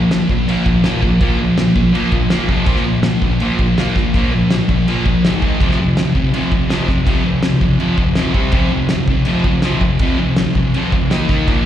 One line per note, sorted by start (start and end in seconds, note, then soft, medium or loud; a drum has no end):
0.11 0.28 A#2 medium
0.11 0.28 F3 medium
0.11 snare loud
0.11 crash medium
0.29 0.47 A#2 medium
0.29 0.47 F3 medium
0.29 kick medium
0.48 0.65 A#2 medium
0.48 0.65 F3 loud
0.48 0.66 A#3 loud
0.48 crash medium
0.66 0.83 A#2 medium
0.66 0.83 F3 medium
0.66 kick loud
0.84 1.01 A#2 loud
0.84 1.02 F3 medium
0.84 1.02 A#3 loud
0.84 snare loud
0.84 crash medium
1.02 1.19 A#2 medium
1.02 1.20 F3 medium
1.02 kick medium
1.20 1.38 A#2 medium
1.20 1.38 F3 loud
1.20 1.39 A#3 loud
1.20 kick loud
1.20 crash medium
1.39 1.56 A#2 medium
1.39 1.56 F3 medium
1.57 1.74 A#2 medium
1.57 1.74 F3 medium
1.57 snare loud
1.57 crash medium
1.75 1.92 A#2 medium
1.75 1.92 F3 medium
1.75 kick medium
1.93 2.11 A#2 medium
1.93 2.11 F3 loud
1.93 2.12 A#3 loud
1.93 crash medium
2.12 2.29 A#2 medium
2.12 2.29 F3 medium
2.12 kick medium
2.30 2.48 A#2 loud
2.30 2.48 F3 medium
2.30 2.48 A#3 loud
2.30 snare loud
2.30 crash medium
2.48 2.66 F2 medium
2.48 2.66 C3 medium
2.48 2.65 F3 loud
2.48 kick medium
2.66 2.84 A#2 loud
2.66 2.84 F3 loud
2.66 2.84 A#3 loud
2.66 kick loud
2.66 crash medium
2.76 snare soft
2.85 3.02 A#2 medium
2.85 3.02 F3 medium
3.03 3.20 A#2 medium
3.03 3.20 F3 medium
3.03 snare loud
3.03 crash medium
3.22 3.39 A#2 medium
3.22 3.39 F3 medium
3.22 kick medium
3.40 3.58 A#2 medium
3.40 3.58 F3 medium
3.40 3.58 A#3 loud
3.40 crash medium
3.59 3.76 A#2 medium
3.59 3.76 F3 medium
3.59 kick loud
3.77 3.95 A#2 loud
3.77 3.95 F3 loud
3.77 3.95 A#3 loud
3.77 snare loud
3.77 crash medium
3.96 4.13 A#2 medium
3.96 4.13 F3 medium
3.96 kick medium
3.96 snare soft
4.14 4.31 A#2 loud
4.14 4.31 F3 loud
4.14 4.32 A#3 loud
4.14 kick loud
4.14 crash medium
4.32 4.48 A#2 medium
4.32 4.49 F3 medium
4.50 4.67 A#2 medium
4.50 4.67 F3 medium
4.50 snare loud
4.50 crash medium
4.69 4.85 A#2 medium
4.69 4.85 F3 medium
4.69 kick medium
4.87 5.04 A#2 loud
4.87 5.05 F3 medium
4.87 5.05 A#3 loud
4.87 crash medium
5.06 5.22 A#2 medium
5.06 5.22 F3 medium
5.06 kick loud
5.25 5.41 G#2 medium
5.25 5.42 D#3 medium
5.25 5.42 G#3 loud
5.25 snare loud
5.25 crash medium
5.42 5.59 G#2 medium
5.42 5.60 D#3 medium
5.42 5.60 G#3 medium
5.42 kick medium
5.61 5.78 F2 loud
5.61 5.78 C3 loud
5.61 5.78 F3 loud
5.61 kick loud
5.61 crash medium
5.71 snare soft
5.79 5.95 F2 medium
5.79 5.95 C3 medium
5.97 6.13 F2 medium
5.97 6.13 C3 medium
5.97 snare loud
5.97 crash medium
6.15 6.32 F2 medium
6.15 6.32 C3 loud
6.15 kick medium
6.34 6.50 F2 medium
6.34 6.51 C3 loud
6.34 6.51 F3 medium
6.34 crash medium
6.52 6.68 F2 medium
6.52 6.68 C3 medium
6.52 kick medium
6.69 6.87 F2 medium
6.69 6.87 C3 loud
6.69 6.88 F3 loud
6.69 snare loud
6.69 crash medium
6.88 7.04 F2 medium
6.88 7.04 C3 medium
6.88 kick medium
6.88 snare soft
7.06 7.23 F2 medium
7.06 7.24 C3 loud
7.06 7.24 F3 loud
7.06 kick loud
7.06 crash medium
7.24 7.41 F2 medium
7.24 7.41 C3 medium
7.43 7.60 F2 medium
7.43 7.60 C3 medium
7.43 snare loud
7.43 crash medium
7.61 7.78 F2 medium
7.61 7.78 C3 medium
7.61 kick medium
7.79 7.96 F2 medium
7.79 7.97 C3 loud
7.79 7.98 F3 loud
7.79 crash medium
7.97 8.14 F2 medium
7.97 8.14 C3 medium
7.97 kick loud
8.15 8.33 F2 loud
8.15 8.33 C3 loud
8.15 8.34 F3 loud
8.15 snare loud
8.15 crash medium
8.34 8.52 C3 medium
8.34 8.52 G3 medium
8.34 8.52 C4 medium
8.34 kick medium
8.52 8.70 F2 loud
8.52 8.70 C3 loud
8.52 8.71 F3 loud
8.52 kick loud
8.52 crash medium
8.72 8.88 F2 medium
8.72 8.88 C3 medium
8.89 9.06 F2 medium
8.89 9.07 C3 medium
8.89 snare loud
8.89 crash medium
9.08 9.25 F2 medium
9.08 9.26 C3 loud
9.08 kick loud
9.25 9.44 F2 loud
9.25 9.44 C3 medium
9.25 9.44 F3 loud
9.25 crash medium
9.44 9.62 F2 medium
9.44 9.62 C3 medium
9.44 kick medium
9.62 9.80 F2 loud
9.62 9.81 C3 loud
9.62 9.81 F3 loud
9.62 snare loud
9.62 crash medium
9.81 9.98 F2 medium
9.81 9.99 C3 medium
9.81 kick medium
9.99 10.17 F2 loud
9.99 10.18 C3 loud
9.99 10.18 F3 loud
9.99 kick loud
9.99 crash medium
10.18 10.35 F2 medium
10.18 10.35 C3 medium
10.36 10.54 F2 medium
10.36 10.54 C3 medium
10.36 snare loud
10.36 crash medium
10.55 10.73 F2 medium
10.55 10.73 C3 loud
10.55 kick loud
10.74 10.92 F2 loud
10.74 10.92 C3 medium
10.74 10.93 F3 loud
10.74 crash medium
10.92 11.09 F2 medium
10.92 11.10 C3 medium
10.92 kick loud
11.11 11.28 D#3 loud
11.11 11.28 A#3 loud
11.11 11.29 D#4 loud
11.11 snare loud
11.11 crash medium
11.29 11.46 D#3 medium
11.29 11.47 A#3 loud
11.29 11.47 D#4 medium
11.29 kick medium
11.29 snare soft
11.47 11.65 A#2 medium
11.47 11.65 F3 medium
11.47 11.65 A#3 medium
11.47 kick loud
11.47 crash medium